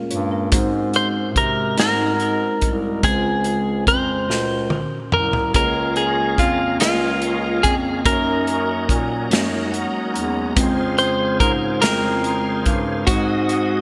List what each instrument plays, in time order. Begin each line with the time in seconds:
Already playing: tine electric piano A#2 G#3 A#3 C#4 F4 G#4 A#4 F5
0.11 bass clarinet G2, tine electric piano F4 C#5, closed hi-hat
0.32 tine electric piano C#4 A#4
0.52 bass clarinet G#2, tine electric piano G#2 G#3 C4 D#4 F#4 C5, kick, closed hi-hat
0.94 clean electric guitar C5, closed hi-hat
1.36 bass clarinet C3, clean electric guitar A#4, kick, closed hi-hat
1.77 bass clarinet G#2, tine electric piano G#3 C4 D#4 F#4 D#5, clean electric guitar A#4, snare, closed hi-hat
2.20 closed hi-hat
2.61 bass clarinet C2, kick, closed hi-hat
3.03 bass clarinet C#2, tine electric piano C#3 G#3 C4 C#4 F4 C5, clean electric guitar G#4, kick, closed hi-hat
3.44 closed hi-hat
3.87 bass clarinet F2, clean electric guitar C5, kick, closed hi-hat
4.28 bass clarinet C#2, tine electric piano A#2 C#4 F#4 A4, snare
4.36 tine electric piano A#4
4.70 high tom
5.12 bass clarinet C2, clean electric guitar A#4, mid tom
5.33 floor tom
5.53 bass clarinet C#2, tine electric piano C#3 A#3 C#4 F4 G#4 C#5, tonewheel organ G#3 C#4 F4 A4, clean electric guitar A#4, kick, closed hi-hat
5.61 tonewheel organ A#4
5.96 clean electric guitar G#4, closed hi-hat
6.38 bass clarinet F2, clean electric guitar F4, kick, closed hi-hat
6.80 bass clarinet C#2, tine electric piano A#3 C#4 F4 G#4 D#5, clean electric guitar F4, snare, closed hi-hat
7.22 closed hi-hat
7.63 bass clarinet F2, clean electric guitar G#4, kick, closed hi-hat
8.04 bass clarinet F#2, tonewheel organ F#3 C#4 D#4 A4, tine electric piano A#3 C#4 D#4 F#4 C5, clean electric guitar A#4, kick, closed hi-hat
8.12 tonewheel organ A#4, tine electric piano C#5
8.47 closed hi-hat
8.89 bass clarinet A#2, kick, closed hi-hat
9.31 bass clarinet F#2, tine electric piano G#3 C#4 D#4 F#4 C#5, snare, closed hi-hat
9.37 tine electric piano A#3
9.72 tine electric piano F#5, closed hi-hat
10.14 bass clarinet E2, tine electric piano A#5, closed hi-hat
10.55 bass clarinet F2, tonewheel organ C#3 F4 G#4 C5, tine electric piano G#3 C4 C#4 F4 B4, kick, closed hi-hat
10.63 tine electric piano C5
10.98 clean electric guitar C5, closed hi-hat
11.40 bass clarinet G#2, clean electric guitar A#4, kick, closed hi-hat
11.81 bass clarinet F2, tine electric piano G#3 C4 C#4 E4 G#4, clean electric guitar A#4, snare, closed hi-hat
11.88 tine electric piano F4
12.24 closed hi-hat
12.66 bass clarinet G2, kick, closed hi-hat
13.06 tine electric piano G#2 G#3 C4 D#4 F#4 C5, bass clarinet G#2, tonewheel organ G#3 D#4 F#4 D#5, clean electric guitar F#4, kick, closed hi-hat
13.49 closed hi-hat